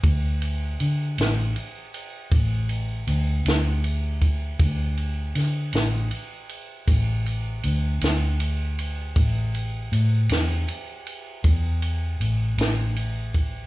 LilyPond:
<<
  \new Staff \with { instrumentName = "Fingered electric bass" } { \clef bass \time 12/8 \key a \dorian \tempo 4. = 53 d,4 d8 a,,8 r4 a,,4 d,8 d,4. | d,4 d8 a,,8 r4 a,,4 d,8 d,4. | a,,4 a,8 e,8 r4 e,4 a,,8 a,,4. | }
  \new DrumStaff \with { instrumentName = "Drums" } \drummode { \time 12/8 <bd cymr>8 cymr8 cymr8 <cymr sn>8 cymr8 cymr8 <bd cymr>8 cymr8 cymr8 <cymr sn>8 cymr8 <bd cymr>8 | <bd cymr>8 cymr8 <cymr sn>8 <cymr sn>8 cymr8 cymr8 <bd cymr>8 cymr8 cymr8 <cymr sn>8 cymr8 cymr8 | <bd cymr>8 cymr8 cymr8 <cymr sn>8 cymr8 cymr8 <bd cymr>8 cymr8 cymr8 <cymr sn>8 cymr8 <bd cymr>8 | }
>>